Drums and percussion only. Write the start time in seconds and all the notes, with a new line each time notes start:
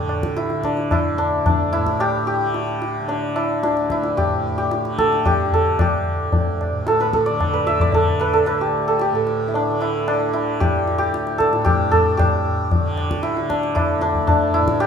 0.09 tabla na
0.23 tabla ke
0.37 tabla te
0.50 tabla te
0.63 tabla ke
0.77 tabla te
0.91 tabla na, tabla ge
1.46 tabla tin, tabla ge
1.73 tabla na
1.86 tabla ke
2.00 tabla na
2.54 tabla te
2.82 tabla te
3.08 tabla tin
3.36 tabla na
3.64 tabla te
3.77 tabla te
3.90 tabla ke
4.04 tabla te
4.18 tabla na, tabla ge
4.71 tabla te
4.85 tabla te
4.99 tabla ke
5.13 tabla te
5.26 tabla na, tabla ge
5.52 tabla ge
5.79 tabla na, tabla ge
6.32 tabla tin, tabla ge
6.61 tabla na
6.87 tabla te
7.00 tabla te
7.13 tabla ke
7.26 tabla te
7.41 tabla na, tabla ge
7.67 tabla te
7.80 tabla ge
7.92 tabla tin, tabla ge
8.20 tabla na
8.46 tabla na
8.99 tabla te
9.27 tabla te
9.54 tabla tin
9.81 tabla na
10.08 tabla na
10.61 tabla na, tabla ge
10.88 tabla te
11.14 tabla te
11.27 tabla te
11.40 tabla ke
11.53 tabla te
11.66 tabla na, tabla ge
11.93 tabla ge
12.20 tabla na, tabla ge
12.71 tabla tin, tabla ge
12.98 tabla na
13.11 tabla ke
13.23 tabla te
13.37 tabla te
13.50 tabla ke
13.63 tabla te
13.76 tabla na, tabla ge
14.01 tabla te
14.15 tabla ge
14.28 tabla tin, tabla ge
14.54 tabla na
14.68 tabla ke
14.80 tabla na